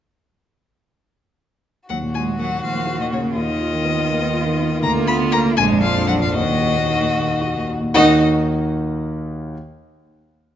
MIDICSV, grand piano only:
0, 0, Header, 1, 2, 480
1, 0, Start_track
1, 0, Key_signature, -6, "minor"
1, 0, Tempo, 495050
1, 1834, Time_signature, 6, 3, 24, 8
1, 5654, Tempo, 525394
1, 9972, End_track
2, 0, Start_track
2, 0, Title_t, "Grand piano"
2, 0, Program_c, 0, 0
2, 1838, Note_on_c, 0, 39, 39
2, 1956, Note_on_c, 0, 46, 33
2, 1997, Control_c, 0, 64, 127
2, 2076, Note_on_c, 0, 66, 31
2, 2148, Note_off_c, 0, 46, 0
2, 2191, Note_on_c, 0, 46, 32
2, 2267, Note_off_c, 0, 66, 0
2, 2310, Note_on_c, 0, 58, 32
2, 2384, Note_off_c, 0, 46, 0
2, 2426, Note_on_c, 0, 46, 31
2, 2503, Note_off_c, 0, 58, 0
2, 2529, Note_off_c, 0, 39, 0
2, 2543, Note_on_c, 0, 39, 37
2, 2620, Note_off_c, 0, 46, 0
2, 2662, Note_on_c, 0, 58, 34
2, 2779, Note_on_c, 0, 66, 37
2, 2855, Note_off_c, 0, 58, 0
2, 2899, Note_on_c, 0, 46, 37
2, 2974, Note_off_c, 0, 66, 0
2, 3022, Note_on_c, 0, 58, 32
2, 3094, Note_off_c, 0, 46, 0
2, 3137, Note_on_c, 0, 46, 34
2, 3215, Note_off_c, 0, 58, 0
2, 3240, Note_off_c, 0, 39, 0
2, 3257, Note_on_c, 0, 39, 47
2, 3261, Note_off_c, 0, 46, 0
2, 3282, Control_c, 0, 64, 0
2, 3377, Note_on_c, 0, 51, 36
2, 3417, Control_c, 0, 64, 127
2, 3499, Note_on_c, 0, 65, 41
2, 3572, Note_off_c, 0, 51, 0
2, 3618, Note_on_c, 0, 51, 40
2, 3691, Note_off_c, 0, 65, 0
2, 3732, Note_on_c, 0, 59, 41
2, 3809, Note_off_c, 0, 51, 0
2, 3851, Note_on_c, 0, 51, 43
2, 3924, Note_off_c, 0, 59, 0
2, 3957, Note_off_c, 0, 39, 0
2, 3971, Note_on_c, 0, 39, 45
2, 4042, Note_off_c, 0, 51, 0
2, 4084, Note_on_c, 0, 59, 43
2, 4205, Note_on_c, 0, 65, 47
2, 4277, Note_off_c, 0, 59, 0
2, 4326, Note_on_c, 0, 51, 50
2, 4396, Note_off_c, 0, 65, 0
2, 4441, Note_on_c, 0, 59, 46
2, 4516, Note_off_c, 0, 51, 0
2, 4556, Note_on_c, 0, 51, 48
2, 4633, Note_off_c, 0, 59, 0
2, 4660, Note_off_c, 0, 39, 0
2, 4676, Note_on_c, 0, 38, 59
2, 4680, Note_off_c, 0, 51, 0
2, 4703, Control_c, 0, 64, 0
2, 4797, Note_on_c, 0, 50, 50
2, 4894, Control_c, 0, 64, 127
2, 4922, Note_on_c, 0, 65, 56
2, 4994, Note_off_c, 0, 50, 0
2, 5043, Note_on_c, 0, 50, 55
2, 5117, Note_off_c, 0, 65, 0
2, 5164, Note_on_c, 0, 58, 54
2, 5238, Note_off_c, 0, 50, 0
2, 5289, Note_on_c, 0, 50, 48
2, 5359, Note_off_c, 0, 58, 0
2, 5383, Note_off_c, 0, 38, 0
2, 5408, Note_on_c, 0, 34, 68
2, 5409, Note_off_c, 0, 50, 0
2, 5426, Control_c, 0, 64, 0
2, 5530, Note_on_c, 0, 41, 51
2, 5584, Control_c, 0, 64, 127
2, 5657, Note_on_c, 0, 65, 55
2, 5723, Note_off_c, 0, 41, 0
2, 5768, Note_on_c, 0, 41, 52
2, 5843, Note_off_c, 0, 65, 0
2, 5896, Note_on_c, 0, 62, 49
2, 5958, Note_off_c, 0, 41, 0
2, 6011, Note_on_c, 0, 41, 46
2, 6083, Note_off_c, 0, 62, 0
2, 6106, Note_off_c, 0, 34, 0
2, 6127, Note_on_c, 0, 39, 60
2, 6130, Note_off_c, 0, 41, 0
2, 6148, Control_c, 0, 64, 0
2, 6249, Note_on_c, 0, 46, 40
2, 6295, Control_c, 0, 64, 127
2, 6369, Note_on_c, 0, 66, 46
2, 6442, Note_off_c, 0, 46, 0
2, 6487, Note_on_c, 0, 46, 40
2, 6562, Note_off_c, 0, 66, 0
2, 6608, Note_on_c, 0, 63, 40
2, 6682, Note_off_c, 0, 46, 0
2, 6730, Note_on_c, 0, 46, 42
2, 6804, Note_off_c, 0, 63, 0
2, 6838, Note_off_c, 0, 39, 0
2, 6851, Note_on_c, 0, 39, 47
2, 6926, Note_off_c, 0, 46, 0
2, 6974, Note_on_c, 0, 63, 38
2, 7100, Note_on_c, 0, 66, 49
2, 7173, Note_off_c, 0, 63, 0
2, 7228, Note_on_c, 0, 46, 44
2, 7299, Note_off_c, 0, 66, 0
2, 7342, Note_on_c, 0, 63, 37
2, 7425, Note_off_c, 0, 46, 0
2, 7465, Note_on_c, 0, 46, 43
2, 7540, Note_off_c, 0, 63, 0
2, 7568, Note_off_c, 0, 39, 0
2, 7582, Note_on_c, 0, 70, 66
2, 7582, Note_on_c, 0, 78, 69
2, 7583, Note_on_c, 0, 39, 71
2, 7583, Note_on_c, 0, 66, 62
2, 7584, Note_on_c, 0, 51, 67
2, 7586, Note_on_c, 0, 63, 62
2, 7588, Note_off_c, 0, 46, 0
2, 7610, Control_c, 0, 64, 0
2, 7738, Control_c, 0, 64, 127
2, 7850, Note_off_c, 0, 70, 0
2, 7850, Note_off_c, 0, 78, 0
2, 7851, Note_off_c, 0, 39, 0
2, 7851, Note_off_c, 0, 51, 0
2, 7851, Note_off_c, 0, 66, 0
2, 7852, Note_off_c, 0, 63, 0
2, 9040, Control_c, 0, 64, 0
2, 9972, End_track
0, 0, End_of_file